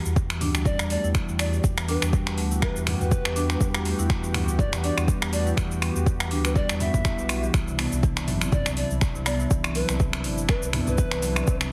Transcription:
Already playing: E3 B3 F#4 G4
0.05 E2, cabasa
0.16 kick, cabasa
0.30 E3, finger snap, cabasa
0.41 D2 D4, mid tom, open hi-hat, cabasa
0.55 G3, finger snap, cabasa
0.65 G3 D5, kick, mid tom, cabasa
0.79 E2, finger snap, cabasa
0.90 A3 D5, open hi-hat, cabasa
1.04 E2 E4, cabasa
1.15 E3, finger snap, kick, cabasa
1.28 E2, cabasa
1.39 D5, finger snap, open hi-hat, cabasa
1.53 cabasa
1.64 E2, kick, cabasa
1.78 E3, finger snap, cabasa
1.88 D4 B4, open hi-hat, cabasa
2.02 E2 G3, finger snap, cabasa
2.13 G3, kick, cabasa
2.27 finger snap, cabasa
2.38 D2 A3, open hi-hat, cabasa
2.51 E4, cabasa
2.62 E3 B4, finger snap, kick, cabasa
2.76 E2, cabasa
2.87 finger snap, mid tom, open hi-hat, cabasa
3.00 E2 B4, mid tom, cabasa
3.11 kick, cabasa
3.25 E2 E3, finger snap, cabasa
3.36 D4, open hi-hat, cabasa
3.50 G3, finger snap, cabasa
3.61 E2 G3, kick, cabasa
3.75 finger snap, cabasa
3.85 A3, open hi-hat, cabasa
3.99 E2 E4, cabasa
4.10 E3, finger snap, kick, cabasa
4.24 cabasa
4.34 D2, finger snap, mid tom, open hi-hat, cabasa
4.48 cabasa
4.59 D5, kick, mid tom, cabasa
4.73 E2 E3, finger snap, cabasa
4.83 D4 D5, open hi-hat, cabasa
4.97 E2 G3, finger snap, cabasa
5.08 G3, kick, cabasa
5.22 E2, finger snap, cabasa
5.32 A3 D5, open hi-hat, cabasa
5.46 E4, cabasa
5.57 E2 E3, finger snap, kick, cabasa
5.71 cabasa
5.82 finger snap, open hi-hat, cabasa
5.96 E2, cabasa
6.06 kick, cabasa
6.20 E3, finger snap, cabasa
6.31 D2 D4, open hi-hat, cabasa
6.45 G3 B4, finger snap, cabasa
6.56 G3 D5, kick, cabasa
6.69 E2, finger snap, cabasa
6.80 B3 E5, mid tom, open hi-hat, cabasa
6.94 E2 B3, kick, mid tom, cabasa
7.05 E4, finger snap, kick, cabasa
7.18 B1 B2, cabasa
7.29 finger snap, open hi-hat, cabasa
7.43 E3, cabasa
7.54 C2 C3 D4 E4, finger snap, kick, cabasa
7.68 C3, cabasa
7.79 B3, finger snap, open hi-hat, cabasa
7.92 C2 C3, cabasa
8.03 E3, kick, cabasa
8.17 finger snap, cabasa
8.28 G1 F#3, mid tom, open hi-hat, cabasa
8.41 C4, finger snap, cabasa
8.52 D5, kick, mid tom, cabasa
8.66 C2, finger snap, cabasa
8.77 D5, open hi-hat, cabasa
8.91 C2, cabasa
9.01 finger snap, kick, cabasa
9.15 C2 C3, cabasa
9.26 B3 D5, finger snap, open hi-hat, cabasa
9.40 C3, cabasa
9.51 C2 E3, kick, cabasa
9.64 finger snap, cabasa
9.75 F#3 B4, open hi-hat, cabasa
9.89 C2 C4, finger snap, cabasa
10.00 C3, kick, cabasa
10.13 finger snap, cabasa
10.24 G1, open hi-hat, cabasa
10.38 cabasa
10.49 B4, finger snap, kick, cabasa
10.62 C2 C3, cabasa
10.73 B3, finger snap, mid tom, open hi-hat, cabasa
10.87 C2 C3 B4, mid tom, cabasa
10.98 E3, kick, cabasa
11.11 C2, finger snap, cabasa
11.22 F#3, open hi-hat, cabasa
11.36 C4, finger snap, cabasa
11.47 C2 C3, kick, cabasa
11.61 finger snap, cabasa

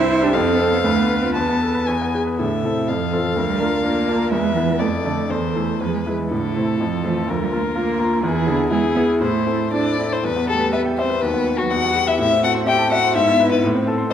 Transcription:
Already playing: C2 C4 E4 C5 E5
0.10 C5
0.23 D4 G4
0.33 F2 C4 A4 F5
0.47 C4
0.59 A4
0.71 B3 C5
0.84 D2 A3 B4
0.97 B3
1.10 B4
1.21 C4 F4
1.35 E2 B3 A5
1.49 B3
1.62 A4
1.74 B4
1.87 E2 G#5
2.02 B3
2.15 G#4
2.27 B4
2.38 A2 D3 A4 E5
2.63 C3 C4 E4 A4
2.87 F2 F3 F5
3.12 E3 C4 F4 A4
3.36 D2 F3 A#4
3.48 G3
3.60 A3 D4 F4 A#4
3.84 A#3 D4 F4 A#4
4.08 D4 F4 A#4
4.31 E2 G#3 B4 E5
4.54 E3 B3 E4 B4
4.79 F2 A3 A4 D5
5.03 D3 A3 D4 D5
5.30 E2 E3 C5
5.55 A3 E4 C5
5.81 E2 F3 G#4 B4
5.94 G#3
6.06 F3 G#3 E4 B4
6.19 E3
6.31 A2 D3 E4 A4
6.55 C3 A3 E4 C5
6.80 F2 F3 F4
7.04 E3 A3 F4 C5
7.28 D2 F3 A#4
7.42 G3
7.52 A3 A#3 F4 A#4
7.75 A#3 F4 A#4
7.99 A#3 F4 A#4
8.23 E2 E3 E4 G#4
8.47 D3 B3 E4 G#4
8.70 G#3 B3 E4 G#4
8.95 B3 E4 G#4
9.20 A2 A3 E4 C5
9.46 C4 E4 A4
9.73 C4 D4 E4 A4 D5
9.98 C4 E4 A4
10.11 C4 C5
10.24 E2 G3 B3 B4
10.36 B3
10.48 A3 G4 A4
10.60 B4
10.73 B3 B4 E5
10.85 G5
10.98 C4 C5 E5
11.09 B4
11.21 D#2 F#3 B3 B4
11.34 B3
11.47 F#4
11.58 F#3 F#4 B4
11.71 E2 G3 F#4 F#5
11.84 B3
11.96 G4
12.07 E4 B4 E5
12.19 A2 C4 E4 E5
12.31 C4
12.43 F#4 A4 F#5
12.54 C5
12.66 G4 E5 G5
12.79 A5
12.91 F#4 E5 F#5
13.04 C5
13.15 G#2 B3 E4 E5
13.28 B3
13.40 B4
13.51 B3 E4 B4
13.64 A2 C4
13.75 C4
13.87 A4
13.98 C5
14.10 F2

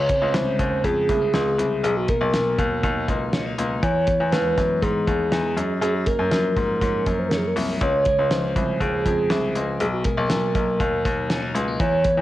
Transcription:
Already playing: C#3 C#5
0.09 C4, kick, closed hi-hat
0.22 C#2
0.34 C2 G#3 C5, snare, closed hi-hat
0.59 D#2 C4, kick, closed hi-hat
0.84 F2 F4 G#4, kick, closed hi-hat
1.09 C2 A#3, kick, closed hi-hat
1.22 C4
1.34 C#2 F4, snare, closed hi-hat
1.59 C2 C4, closed hi-hat
1.84 B1 B2 G#4, closed hi-hat
1.97 F#4
2.08 A#3 A#4, kick, closed hi-hat
2.21 B1
2.33 B1 F#3, snare, closed hi-hat
2.58 D#2 A#3, kick, closed hi-hat
2.83 D#2 D#4, kick, closed hi-hat
3.08 C#2 A#3, kick, closed hi-hat
3.33 C#4, snare, closed hi-hat
3.46 D#4
3.58 C#2 A#3, closed hi-hat
3.82 E2 E3 C#5, kick, closed hi-hat
4.07 B3, kick, closed hi-hat
4.20 E2
4.32 D#2 G#3 B4, snare, closed hi-hat
4.57 F#2 B3, kick, snare, closed hi-hat
4.82 G#2 D#4 G#4, kick, closed hi-hat
5.07 D#2 B3, kick, closed hi-hat
5.32 E2 D#4, snare, closed hi-hat
5.57 F#2, closed hi-hat
5.81 F#2 G#4, closed hi-hat
5.95 F#4
6.06 A#3 A#4, kick, closed hi-hat
6.19 F#2
6.31 F#2 F3, snare, closed hi-hat
6.57 G#2 A#3, kick, closed hi-hat
6.82 G#2 C#4, kick, closed hi-hat
7.06 F#2 A#3, kick, closed hi-hat
7.19 C5
7.29 C#4 A#4, snare, closed hi-hat
7.37 G#4
7.47 A#4
7.56 C2 A#3, open hi-hat
7.81 C#2 C#3 C#5, kick, closed hi-hat
8.05 G#3, kick, closed hi-hat
8.19 C#2
8.31 F3 C5, snare, closed hi-hat
8.56 C2 G#3, kick, closed hi-hat
8.80 D#2 C4 G#4, kick, closed hi-hat
9.06 F2 G#3, kick, closed hi-hat
9.30 C2 C4, snare, closed hi-hat
9.56 C#2 G#3, closed hi-hat
9.80 B1 B2 G#4, closed hi-hat
9.93 F#4
10.04 G#3 A#4, kick, closed hi-hat
10.18 B1 A#3
10.30 B1 F#3, snare, closed hi-hat
10.55 B1 A#3, kick, closed hi-hat
10.80 D#2 D#4, kick, closed hi-hat
11.05 D#2 A#3, kick, closed hi-hat
11.30 C#4, snare, closed hi-hat
11.42 D#4
11.55 C#2 G#3, closed hi-hat
11.68 A#3
11.80 E2 E3 C#5, kick, closed hi-hat
12.05 B3, kick, closed hi-hat
12.18 E2

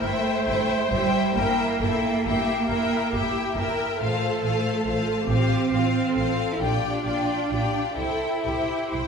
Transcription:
0.01 G1 A3 E4 C5 E5 G5
0.46 G1 E4 E5 G5
0.91 G1 G3 E4 E5 G5
1.36 G1 A#3 E4 A#4 E5 G5
1.80 G1 E4 A4 E5 G5
2.25 G1 E4 G4 E5 G5
2.69 G1 E4 A#4 E5 G5
3.12 G1 E4 G4 E5 G5
3.56 G1 E4 A#4 E5 G5
3.99 A1 A3 F4 A4 C5 F5
4.43 A1 F4 C5 F5
4.85 A1 F4 C5 F5
5.27 A1 C4 F4 G4 C5 F5
5.71 A1 F4 C5 F5
6.15 A1 F4 A4 C5 F5
6.54 E4
6.60 A#1 D4 F4 G4 D5 G5
7.05 A#1 F4 D5 G5
7.50 A#1 F4 G4 D5 G5
7.96 C2 E4 A4 C5 G5
8.43 C2 E4 G4 C5 G5
8.91 C2 E4 C5 G5

